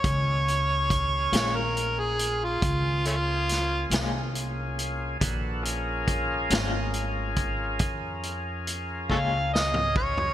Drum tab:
HH |x-x-x-x-x-x-x-x-x-x-x-x-|x-x-x-x-x-x-x-x-x-------|
SD |------o---------o-o-----|------o-------------o---|
T2 |------------------------|---------------------o--|
FT |------------------------|-----------------------o|
BD |o---o-------o-----------|o---o-----o-o-----o---o-|